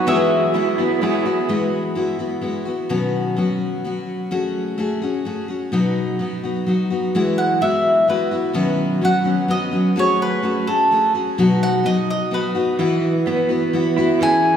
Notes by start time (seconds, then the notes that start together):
Already playing: B3 D#4
0.07 E3 F#3 G#3 B3 E4 F#4 G#4 E5
0.54 G#3 B3 E4 F#4
0.78 B3 E4 F#4
1.01 G#3 B3 E4 F#4 G#4
1.26 B3 E4 F#4
1.49 E3 G#3 B3 E4 F#4
1.95 G#3 B3 E4 F#4
2.19 B3 E4 F#4
2.41 G#3 B3 E4 F#4
2.65 B3 E4 F#4
2.89 B2 D#3 F#3 B3 C#4 F#4
3.37 F#3 B3 C#4 F#4
3.84 F#3 B3 C#4 F#4
4.31 A3 C#4 F#4 G#4
4.78 A3 C#4 F#4 G#4
5.02 C#4 F#4 G#4
5.25 A3 C#4 F#4 G#4
5.48 C#4 F#4 G#4
5.72 B2 F#3 B3 D#4 F#4
6.19 F#3 B3 D#4 F#4
6.44 B3 D#4 F#4
6.66 F#3 B3 D#4 F#4
6.90 B3 D#4 F#4
7.15 E3 G#3 B3 E4 F#4
7.38 F#5
7.61 G#3 B3 E4 F#4 E5
8.08 G#3 B3 E4 F#4 B4
8.31 B3 E4 F#4
8.53 B2 D#3 F#3 B3 C#4 F#4
9.01 F#3 B3 C#4 F#4 F#5
9.24 F#3 B3 C#4 F#4
9.48 F#3 B3 C#4 F#4 D#5
9.71 F#3 B3 C#4 F#4
9.96 A3 C#4 F#4 G#4 C#5
10.22 B4
10.43 A3 C#4 F#4 G#4
10.67 C#4 F#4 G#4 A4
10.91 A3 C#4 F#4 G#4
11.15 C#4 F#4 G#4
11.38 B2 F#3 B3 D#4 F#4
11.63 F#5
11.84 F#3 B3 D#4 F#4 D#5
12.10 D#5
12.31 F#3 B3 D#4 F#4 B4
12.55 B3 D#4 F#4
12.79 E3 B3 E4 F#4
13.26 E3 B3 E4 F#4
13.49 B3 E4 F#4
13.73 E3 B3 E4 F#4
13.98 B3 E4 F#4
14.21 E3 C#4 E4 G#4 G#5